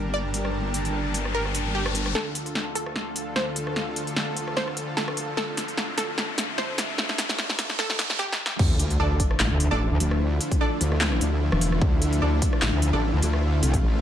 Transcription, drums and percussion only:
0.34 closed hi-hat medium
0.45 cross-stick medium
0.74 closed hi-hat medium
0.85 closed hi-hat soft
1.14 closed hi-hat medium
1.25 cross-stick soft
1.45 cross-stick soft
1.55 closed hi-hat medium
1.86 cross-stick medium
1.95 closed hi-hat medium
2.06 cross-stick medium
2.15 snare soft
2.35 closed hi-hat medium
2.46 closed hi-hat soft
2.55 snare medium
2.75 closed hi-hat medium
2.86 cross-stick soft
2.96 snare medium
3.16 closed hi-hat medium
3.36 snare medium
3.56 closed hi-hat medium
3.67 cross-stick soft
3.76 snare medium
3.96 closed hi-hat medium
4.07 closed hi-hat soft
4.16 snare medium
4.37 closed hi-hat medium
4.48 cross-stick soft
4.57 snare medium
4.68 cross-stick soft
4.77 closed hi-hat medium
4.97 snare medium
5.08 cross-stick medium
5.17 closed hi-hat medium
5.37 snare medium
5.57 snare medium
5.57 closed hi-hat medium
5.68 closed hi-hat soft
5.77 snare medium
5.98 snare medium
5.98 closed hi-hat medium
6.18 snare medium
6.38 snare medium
6.38 closed hi-hat medium
6.58 snare medium
6.78 snare medium
6.78 closed hi-hat medium
6.98 snare medium
7.09 snare medium
7.18 snare medium
7.18 closed hi-hat medium
7.29 snare medium
7.29 closed hi-hat soft
7.39 snare loud
7.49 snare medium
7.59 snare loud
7.59 closed hi-hat medium
7.70 snare medium
7.79 snare loud
7.90 snare medium
7.99 snare loud
7.99 closed hi-hat medium
8.10 snare medium
8.19 snare medium
8.32 snare medium
8.46 snare loud
8.59 kick loud
8.59 crash loud
8.79 closed hi-hat medium
8.90 closed hi-hat soft
9.20 kick medium
9.20 closed hi-hat medium
9.31 cross-stick soft
9.40 snare loud
9.40 clap loud
9.60 closed hi-hat medium
10.00 closed hi-hat medium
10.11 cross-stick medium
10.41 closed hi-hat medium
10.52 kick medium
10.52 closed hi-hat soft
10.81 closed hi-hat medium
10.92 cross-stick soft
11.01 snare loud
11.01 clap loud
11.12 cross-stick medium
11.21 closed hi-hat medium
11.52 cross-stick medium
11.61 closed hi-hat medium
11.72 cross-stick medium
11.82 kick loud
12.02 closed hi-hat medium
12.13 closed hi-hat soft
12.42 kick medium
12.42 closed hi-hat medium
12.53 cross-stick medium
12.62 snare loud
12.62 clap loud
12.82 closed hi-hat medium
13.22 closed hi-hat medium
13.33 cross-stick medium
13.63 closed hi-hat medium
13.74 kick medium
13.74 closed hi-hat soft

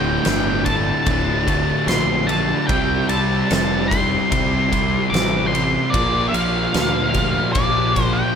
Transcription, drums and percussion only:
0.25 snare loud
0.25 ride loud
0.66 kick medium
0.66 ride medium
1.06 kick loud
1.06 ride loud
1.48 kick medium
1.48 ride medium
1.88 snare loud
1.88 ride loud
2.29 ride medium
2.69 kick loud
2.69 ride loud
3.09 ride medium
3.51 snare loud
3.51 ride loud
3.91 kick medium
3.91 ride medium
4.32 kick loud
4.32 ride loud
4.73 kick medium
4.73 ride medium
5.14 snare loud
5.14 ride loud
5.55 ride medium
5.94 kick loud
5.94 ride loud
6.34 ride medium
6.74 snare loud
6.74 ride loud
7.14 kick medium
7.14 ride medium
7.55 kick loud
7.55 ride loud
7.96 kick medium
7.96 ride medium

